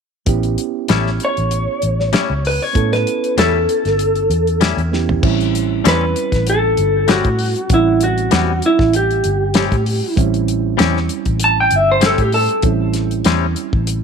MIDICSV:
0, 0, Header, 1, 6, 480
1, 0, Start_track
1, 0, Tempo, 618557
1, 213, Time_signature, 4, 2, 24, 8
1, 10891, End_track
2, 0, Start_track
2, 0, Title_t, "Lead electric guitar"
2, 0, Program_c, 0, 29
2, 967, Note_on_c, 0, 73, 80
2, 1884, Note_off_c, 0, 73, 0
2, 1917, Note_on_c, 0, 71, 69
2, 2037, Note_off_c, 0, 71, 0
2, 2037, Note_on_c, 0, 73, 77
2, 2265, Note_off_c, 0, 73, 0
2, 2275, Note_on_c, 0, 71, 64
2, 2611, Note_off_c, 0, 71, 0
2, 2631, Note_on_c, 0, 69, 86
2, 3556, Note_off_c, 0, 69, 0
2, 4564, Note_on_c, 0, 71, 88
2, 5017, Note_off_c, 0, 71, 0
2, 5041, Note_on_c, 0, 69, 86
2, 5495, Note_off_c, 0, 69, 0
2, 5517, Note_on_c, 0, 66, 97
2, 5973, Note_off_c, 0, 66, 0
2, 6006, Note_on_c, 0, 64, 82
2, 6225, Note_off_c, 0, 64, 0
2, 6237, Note_on_c, 0, 66, 86
2, 6693, Note_off_c, 0, 66, 0
2, 6721, Note_on_c, 0, 64, 85
2, 6942, Note_off_c, 0, 64, 0
2, 6956, Note_on_c, 0, 67, 80
2, 7876, Note_off_c, 0, 67, 0
2, 8878, Note_on_c, 0, 81, 91
2, 8991, Note_off_c, 0, 81, 0
2, 9005, Note_on_c, 0, 79, 78
2, 9125, Note_off_c, 0, 79, 0
2, 9125, Note_on_c, 0, 76, 76
2, 9235, Note_off_c, 0, 76, 0
2, 9246, Note_on_c, 0, 72, 64
2, 9342, Note_off_c, 0, 72, 0
2, 9361, Note_on_c, 0, 69, 83
2, 9478, Note_off_c, 0, 69, 0
2, 9478, Note_on_c, 0, 67, 80
2, 9575, Note_off_c, 0, 67, 0
2, 9578, Note_on_c, 0, 69, 84
2, 9807, Note_off_c, 0, 69, 0
2, 10891, End_track
3, 0, Start_track
3, 0, Title_t, "Reed electric piano"
3, 0, Program_c, 1, 4
3, 202, Note_on_c, 1, 59, 57
3, 213, Note_on_c, 1, 61, 51
3, 218, Note_on_c, 1, 64, 50
3, 223, Note_on_c, 1, 67, 60
3, 2100, Note_off_c, 1, 59, 0
3, 2106, Note_off_c, 1, 61, 0
3, 2108, Note_off_c, 1, 64, 0
3, 2111, Note_off_c, 1, 67, 0
3, 2122, Note_on_c, 1, 59, 52
3, 2128, Note_on_c, 1, 61, 49
3, 2138, Note_on_c, 1, 64, 47
3, 2142, Note_on_c, 1, 69, 58
3, 3780, Note_off_c, 1, 59, 0
3, 3783, Note_off_c, 1, 61, 0
3, 3788, Note_off_c, 1, 64, 0
3, 3790, Note_off_c, 1, 69, 0
3, 3815, Note_on_c, 1, 59, 49
3, 3819, Note_on_c, 1, 61, 42
3, 3824, Note_on_c, 1, 64, 44
3, 3828, Note_on_c, 1, 67, 53
3, 4048, Note_on_c, 1, 55, 66
3, 4055, Note_off_c, 1, 61, 0
3, 4057, Note_off_c, 1, 59, 0
3, 4059, Note_on_c, 1, 60, 60
3, 4061, Note_off_c, 1, 64, 0
3, 4063, Note_off_c, 1, 67, 0
3, 4065, Note_on_c, 1, 61, 55
3, 4071, Note_on_c, 1, 64, 67
3, 5942, Note_off_c, 1, 55, 0
3, 5947, Note_off_c, 1, 60, 0
3, 5950, Note_off_c, 1, 61, 0
3, 5953, Note_off_c, 1, 64, 0
3, 5972, Note_on_c, 1, 55, 54
3, 5977, Note_on_c, 1, 60, 45
3, 5985, Note_on_c, 1, 61, 46
3, 5995, Note_on_c, 1, 78, 61
3, 7861, Note_off_c, 1, 55, 0
3, 7864, Note_off_c, 1, 60, 0
3, 7868, Note_off_c, 1, 61, 0
3, 7873, Note_off_c, 1, 78, 0
3, 7884, Note_on_c, 1, 55, 64
3, 7886, Note_on_c, 1, 60, 59
3, 7897, Note_on_c, 1, 61, 62
3, 7901, Note_on_c, 1, 64, 68
3, 9774, Note_off_c, 1, 55, 0
3, 9776, Note_off_c, 1, 60, 0
3, 9781, Note_off_c, 1, 61, 0
3, 9783, Note_off_c, 1, 64, 0
3, 9797, Note_on_c, 1, 55, 54
3, 9806, Note_on_c, 1, 60, 46
3, 9813, Note_on_c, 1, 61, 49
3, 9821, Note_on_c, 1, 64, 60
3, 10891, Note_off_c, 1, 55, 0
3, 10891, Note_off_c, 1, 60, 0
3, 10891, Note_off_c, 1, 61, 0
3, 10891, Note_off_c, 1, 64, 0
3, 10891, End_track
4, 0, Start_track
4, 0, Title_t, "Clean electric guitar"
4, 0, Program_c, 2, 27
4, 692, Note_on_c, 2, 45, 83
4, 695, Note_on_c, 2, 55, 79
4, 702, Note_on_c, 2, 61, 78
4, 704, Note_on_c, 2, 64, 83
4, 845, Note_off_c, 2, 45, 0
4, 846, Note_off_c, 2, 55, 0
4, 850, Note_off_c, 2, 61, 0
4, 851, Note_off_c, 2, 64, 0
4, 1651, Note_on_c, 2, 45, 67
4, 1654, Note_on_c, 2, 55, 80
4, 1659, Note_on_c, 2, 64, 70
4, 1660, Note_on_c, 2, 61, 75
4, 1805, Note_off_c, 2, 45, 0
4, 1806, Note_off_c, 2, 55, 0
4, 1809, Note_off_c, 2, 61, 0
4, 1809, Note_off_c, 2, 64, 0
4, 2620, Note_on_c, 2, 45, 71
4, 2623, Note_on_c, 2, 55, 76
4, 2628, Note_on_c, 2, 61, 79
4, 2631, Note_on_c, 2, 64, 77
4, 2770, Note_off_c, 2, 45, 0
4, 2772, Note_off_c, 2, 55, 0
4, 2774, Note_off_c, 2, 61, 0
4, 2776, Note_off_c, 2, 64, 0
4, 3574, Note_on_c, 2, 45, 68
4, 3578, Note_on_c, 2, 55, 73
4, 3582, Note_on_c, 2, 61, 72
4, 3587, Note_on_c, 2, 64, 72
4, 3728, Note_off_c, 2, 45, 0
4, 3729, Note_off_c, 2, 55, 0
4, 3731, Note_off_c, 2, 61, 0
4, 3734, Note_off_c, 2, 64, 0
4, 4534, Note_on_c, 2, 45, 70
4, 4538, Note_on_c, 2, 55, 74
4, 4541, Note_on_c, 2, 60, 88
4, 4547, Note_on_c, 2, 61, 88
4, 4688, Note_off_c, 2, 45, 0
4, 4689, Note_off_c, 2, 55, 0
4, 4691, Note_off_c, 2, 60, 0
4, 4694, Note_off_c, 2, 61, 0
4, 5492, Note_on_c, 2, 45, 70
4, 5498, Note_on_c, 2, 55, 75
4, 5501, Note_on_c, 2, 60, 80
4, 5503, Note_on_c, 2, 61, 74
4, 5646, Note_off_c, 2, 45, 0
4, 5649, Note_off_c, 2, 55, 0
4, 5650, Note_off_c, 2, 60, 0
4, 5652, Note_off_c, 2, 61, 0
4, 6449, Note_on_c, 2, 45, 71
4, 6453, Note_on_c, 2, 55, 85
4, 6457, Note_on_c, 2, 60, 74
4, 6461, Note_on_c, 2, 61, 80
4, 6604, Note_off_c, 2, 45, 0
4, 6606, Note_off_c, 2, 55, 0
4, 6608, Note_off_c, 2, 60, 0
4, 6610, Note_off_c, 2, 61, 0
4, 7409, Note_on_c, 2, 45, 77
4, 7413, Note_on_c, 2, 55, 74
4, 7421, Note_on_c, 2, 60, 69
4, 7421, Note_on_c, 2, 61, 80
4, 7563, Note_off_c, 2, 45, 0
4, 7566, Note_off_c, 2, 55, 0
4, 7569, Note_off_c, 2, 60, 0
4, 7569, Note_off_c, 2, 61, 0
4, 8361, Note_on_c, 2, 45, 84
4, 8368, Note_on_c, 2, 55, 85
4, 8369, Note_on_c, 2, 60, 88
4, 8373, Note_on_c, 2, 61, 103
4, 8519, Note_off_c, 2, 45, 0
4, 8522, Note_off_c, 2, 55, 0
4, 8523, Note_off_c, 2, 60, 0
4, 8525, Note_off_c, 2, 61, 0
4, 9318, Note_on_c, 2, 45, 63
4, 9323, Note_on_c, 2, 55, 67
4, 9329, Note_on_c, 2, 60, 78
4, 9331, Note_on_c, 2, 61, 75
4, 9476, Note_off_c, 2, 45, 0
4, 9479, Note_off_c, 2, 55, 0
4, 9482, Note_off_c, 2, 60, 0
4, 9483, Note_off_c, 2, 61, 0
4, 10286, Note_on_c, 2, 45, 77
4, 10290, Note_on_c, 2, 55, 83
4, 10293, Note_on_c, 2, 60, 96
4, 10297, Note_on_c, 2, 61, 86
4, 10439, Note_off_c, 2, 45, 0
4, 10441, Note_off_c, 2, 55, 0
4, 10442, Note_off_c, 2, 60, 0
4, 10444, Note_off_c, 2, 61, 0
4, 10891, End_track
5, 0, Start_track
5, 0, Title_t, "Fingered electric bass"
5, 0, Program_c, 3, 33
5, 210, Note_on_c, 3, 33, 94
5, 431, Note_off_c, 3, 33, 0
5, 696, Note_on_c, 3, 33, 86
5, 915, Note_off_c, 3, 33, 0
5, 1069, Note_on_c, 3, 33, 80
5, 1287, Note_off_c, 3, 33, 0
5, 1420, Note_on_c, 3, 33, 80
5, 1638, Note_off_c, 3, 33, 0
5, 1783, Note_on_c, 3, 37, 74
5, 2004, Note_off_c, 3, 37, 0
5, 2139, Note_on_c, 3, 45, 95
5, 2358, Note_off_c, 3, 45, 0
5, 2618, Note_on_c, 3, 40, 78
5, 2838, Note_off_c, 3, 40, 0
5, 2990, Note_on_c, 3, 31, 69
5, 3310, Note_off_c, 3, 31, 0
5, 3334, Note_on_c, 3, 40, 81
5, 3674, Note_off_c, 3, 40, 0
5, 3702, Note_on_c, 3, 40, 76
5, 4026, Note_off_c, 3, 40, 0
5, 4060, Note_on_c, 3, 33, 95
5, 4508, Note_off_c, 3, 33, 0
5, 4543, Note_on_c, 3, 40, 86
5, 4760, Note_off_c, 3, 40, 0
5, 4911, Note_on_c, 3, 33, 76
5, 5230, Note_off_c, 3, 33, 0
5, 5262, Note_on_c, 3, 31, 76
5, 5598, Note_off_c, 3, 31, 0
5, 5627, Note_on_c, 3, 45, 85
5, 5846, Note_off_c, 3, 45, 0
5, 5975, Note_on_c, 3, 33, 96
5, 6425, Note_off_c, 3, 33, 0
5, 6457, Note_on_c, 3, 40, 84
5, 6676, Note_off_c, 3, 40, 0
5, 6824, Note_on_c, 3, 33, 73
5, 7145, Note_off_c, 3, 33, 0
5, 7179, Note_on_c, 3, 31, 83
5, 7515, Note_off_c, 3, 31, 0
5, 7542, Note_on_c, 3, 45, 89
5, 7762, Note_off_c, 3, 45, 0
5, 7894, Note_on_c, 3, 33, 94
5, 8343, Note_off_c, 3, 33, 0
5, 8381, Note_on_c, 3, 40, 88
5, 8597, Note_off_c, 3, 40, 0
5, 8735, Note_on_c, 3, 33, 71
5, 9059, Note_off_c, 3, 33, 0
5, 9094, Note_on_c, 3, 31, 79
5, 9431, Note_off_c, 3, 31, 0
5, 9455, Note_on_c, 3, 45, 83
5, 9677, Note_off_c, 3, 45, 0
5, 9802, Note_on_c, 3, 33, 98
5, 10254, Note_off_c, 3, 33, 0
5, 10287, Note_on_c, 3, 40, 90
5, 10507, Note_off_c, 3, 40, 0
5, 10656, Note_on_c, 3, 33, 72
5, 10891, Note_off_c, 3, 33, 0
5, 10891, End_track
6, 0, Start_track
6, 0, Title_t, "Drums"
6, 204, Note_on_c, 9, 42, 65
6, 207, Note_on_c, 9, 36, 88
6, 281, Note_off_c, 9, 42, 0
6, 284, Note_off_c, 9, 36, 0
6, 335, Note_on_c, 9, 42, 32
6, 413, Note_off_c, 9, 42, 0
6, 449, Note_on_c, 9, 42, 50
6, 527, Note_off_c, 9, 42, 0
6, 686, Note_on_c, 9, 42, 75
6, 697, Note_on_c, 9, 38, 99
6, 764, Note_off_c, 9, 42, 0
6, 775, Note_off_c, 9, 38, 0
6, 828, Note_on_c, 9, 38, 30
6, 906, Note_off_c, 9, 38, 0
6, 931, Note_on_c, 9, 42, 48
6, 1009, Note_off_c, 9, 42, 0
6, 1063, Note_on_c, 9, 42, 31
6, 1141, Note_off_c, 9, 42, 0
6, 1172, Note_on_c, 9, 42, 68
6, 1249, Note_off_c, 9, 42, 0
6, 1412, Note_on_c, 9, 42, 53
6, 1489, Note_off_c, 9, 42, 0
6, 1552, Note_on_c, 9, 38, 29
6, 1630, Note_off_c, 9, 38, 0
6, 1651, Note_on_c, 9, 42, 75
6, 1662, Note_on_c, 9, 38, 97
6, 1729, Note_off_c, 9, 42, 0
6, 1740, Note_off_c, 9, 38, 0
6, 1900, Note_on_c, 9, 46, 74
6, 1978, Note_off_c, 9, 46, 0
6, 2135, Note_on_c, 9, 36, 91
6, 2136, Note_on_c, 9, 42, 68
6, 2213, Note_off_c, 9, 36, 0
6, 2214, Note_off_c, 9, 42, 0
6, 2273, Note_on_c, 9, 42, 36
6, 2284, Note_on_c, 9, 38, 28
6, 2351, Note_off_c, 9, 42, 0
6, 2362, Note_off_c, 9, 38, 0
6, 2383, Note_on_c, 9, 42, 48
6, 2460, Note_off_c, 9, 42, 0
6, 2513, Note_on_c, 9, 42, 34
6, 2591, Note_off_c, 9, 42, 0
6, 2621, Note_on_c, 9, 42, 78
6, 2631, Note_on_c, 9, 38, 100
6, 2698, Note_off_c, 9, 42, 0
6, 2709, Note_off_c, 9, 38, 0
6, 2863, Note_on_c, 9, 42, 50
6, 2941, Note_off_c, 9, 42, 0
6, 2989, Note_on_c, 9, 42, 29
6, 2999, Note_on_c, 9, 38, 29
6, 3066, Note_off_c, 9, 42, 0
6, 3077, Note_off_c, 9, 38, 0
6, 3097, Note_on_c, 9, 42, 66
6, 3175, Note_off_c, 9, 42, 0
6, 3224, Note_on_c, 9, 42, 32
6, 3301, Note_off_c, 9, 42, 0
6, 3341, Note_on_c, 9, 42, 46
6, 3419, Note_off_c, 9, 42, 0
6, 3471, Note_on_c, 9, 42, 31
6, 3549, Note_off_c, 9, 42, 0
6, 3577, Note_on_c, 9, 42, 70
6, 3588, Note_on_c, 9, 38, 99
6, 3654, Note_off_c, 9, 42, 0
6, 3665, Note_off_c, 9, 38, 0
6, 3712, Note_on_c, 9, 42, 27
6, 3789, Note_off_c, 9, 42, 0
6, 3828, Note_on_c, 9, 38, 50
6, 3906, Note_off_c, 9, 38, 0
6, 3951, Note_on_c, 9, 43, 71
6, 4028, Note_off_c, 9, 43, 0
6, 4058, Note_on_c, 9, 49, 82
6, 4059, Note_on_c, 9, 36, 102
6, 4136, Note_off_c, 9, 36, 0
6, 4136, Note_off_c, 9, 49, 0
6, 4194, Note_on_c, 9, 42, 35
6, 4272, Note_off_c, 9, 42, 0
6, 4307, Note_on_c, 9, 42, 60
6, 4385, Note_off_c, 9, 42, 0
6, 4542, Note_on_c, 9, 42, 92
6, 4553, Note_on_c, 9, 38, 101
6, 4620, Note_off_c, 9, 42, 0
6, 4631, Note_off_c, 9, 38, 0
6, 4780, Note_on_c, 9, 42, 51
6, 4857, Note_off_c, 9, 42, 0
6, 4906, Note_on_c, 9, 36, 71
6, 4907, Note_on_c, 9, 42, 37
6, 4918, Note_on_c, 9, 38, 30
6, 4983, Note_off_c, 9, 36, 0
6, 4985, Note_off_c, 9, 42, 0
6, 4996, Note_off_c, 9, 38, 0
6, 5018, Note_on_c, 9, 42, 79
6, 5095, Note_off_c, 9, 42, 0
6, 5256, Note_on_c, 9, 42, 54
6, 5334, Note_off_c, 9, 42, 0
6, 5493, Note_on_c, 9, 42, 74
6, 5504, Note_on_c, 9, 38, 95
6, 5571, Note_off_c, 9, 42, 0
6, 5582, Note_off_c, 9, 38, 0
6, 5621, Note_on_c, 9, 42, 30
6, 5624, Note_on_c, 9, 36, 69
6, 5699, Note_off_c, 9, 42, 0
6, 5702, Note_off_c, 9, 36, 0
6, 5732, Note_on_c, 9, 46, 76
6, 5810, Note_off_c, 9, 46, 0
6, 5865, Note_on_c, 9, 42, 37
6, 5943, Note_off_c, 9, 42, 0
6, 5972, Note_on_c, 9, 42, 79
6, 5975, Note_on_c, 9, 36, 100
6, 6049, Note_off_c, 9, 42, 0
6, 6052, Note_off_c, 9, 36, 0
6, 6212, Note_on_c, 9, 42, 58
6, 6290, Note_off_c, 9, 42, 0
6, 6345, Note_on_c, 9, 42, 35
6, 6422, Note_off_c, 9, 42, 0
6, 6449, Note_on_c, 9, 42, 84
6, 6460, Note_on_c, 9, 38, 103
6, 6527, Note_off_c, 9, 42, 0
6, 6538, Note_off_c, 9, 38, 0
6, 6690, Note_on_c, 9, 42, 52
6, 6768, Note_off_c, 9, 42, 0
6, 6822, Note_on_c, 9, 36, 80
6, 6829, Note_on_c, 9, 38, 31
6, 6899, Note_off_c, 9, 36, 0
6, 6907, Note_off_c, 9, 38, 0
6, 6933, Note_on_c, 9, 42, 69
6, 7011, Note_off_c, 9, 42, 0
6, 7066, Note_on_c, 9, 42, 30
6, 7144, Note_off_c, 9, 42, 0
6, 7169, Note_on_c, 9, 42, 55
6, 7246, Note_off_c, 9, 42, 0
6, 7403, Note_on_c, 9, 42, 73
6, 7414, Note_on_c, 9, 38, 107
6, 7481, Note_off_c, 9, 42, 0
6, 7492, Note_off_c, 9, 38, 0
6, 7541, Note_on_c, 9, 36, 77
6, 7543, Note_on_c, 9, 42, 31
6, 7619, Note_off_c, 9, 36, 0
6, 7620, Note_off_c, 9, 42, 0
6, 7654, Note_on_c, 9, 46, 77
6, 7731, Note_off_c, 9, 46, 0
6, 7893, Note_on_c, 9, 36, 94
6, 7896, Note_on_c, 9, 42, 75
6, 7971, Note_off_c, 9, 36, 0
6, 7974, Note_off_c, 9, 42, 0
6, 8024, Note_on_c, 9, 42, 34
6, 8101, Note_off_c, 9, 42, 0
6, 8135, Note_on_c, 9, 42, 60
6, 8212, Note_off_c, 9, 42, 0
6, 8372, Note_on_c, 9, 42, 77
6, 8383, Note_on_c, 9, 38, 106
6, 8450, Note_off_c, 9, 42, 0
6, 8460, Note_off_c, 9, 38, 0
6, 8511, Note_on_c, 9, 38, 31
6, 8589, Note_off_c, 9, 38, 0
6, 8607, Note_on_c, 9, 42, 55
6, 8685, Note_off_c, 9, 42, 0
6, 8733, Note_on_c, 9, 42, 33
6, 8737, Note_on_c, 9, 36, 71
6, 8811, Note_off_c, 9, 42, 0
6, 8815, Note_off_c, 9, 36, 0
6, 8843, Note_on_c, 9, 42, 81
6, 8920, Note_off_c, 9, 42, 0
6, 9084, Note_on_c, 9, 42, 56
6, 9161, Note_off_c, 9, 42, 0
6, 9322, Note_on_c, 9, 42, 83
6, 9333, Note_on_c, 9, 38, 101
6, 9400, Note_off_c, 9, 42, 0
6, 9411, Note_off_c, 9, 38, 0
6, 9451, Note_on_c, 9, 42, 36
6, 9454, Note_on_c, 9, 36, 68
6, 9529, Note_off_c, 9, 42, 0
6, 9531, Note_off_c, 9, 36, 0
6, 9564, Note_on_c, 9, 46, 78
6, 9641, Note_off_c, 9, 46, 0
6, 9692, Note_on_c, 9, 42, 37
6, 9770, Note_off_c, 9, 42, 0
6, 9797, Note_on_c, 9, 42, 69
6, 9803, Note_on_c, 9, 36, 99
6, 9874, Note_off_c, 9, 42, 0
6, 9880, Note_off_c, 9, 36, 0
6, 10037, Note_on_c, 9, 42, 55
6, 10048, Note_on_c, 9, 38, 28
6, 10115, Note_off_c, 9, 42, 0
6, 10126, Note_off_c, 9, 38, 0
6, 10173, Note_on_c, 9, 42, 37
6, 10251, Note_off_c, 9, 42, 0
6, 10278, Note_on_c, 9, 42, 77
6, 10289, Note_on_c, 9, 38, 98
6, 10356, Note_off_c, 9, 42, 0
6, 10366, Note_off_c, 9, 38, 0
6, 10523, Note_on_c, 9, 42, 54
6, 10600, Note_off_c, 9, 42, 0
6, 10654, Note_on_c, 9, 36, 75
6, 10731, Note_off_c, 9, 36, 0
6, 10764, Note_on_c, 9, 42, 79
6, 10841, Note_off_c, 9, 42, 0
6, 10891, End_track
0, 0, End_of_file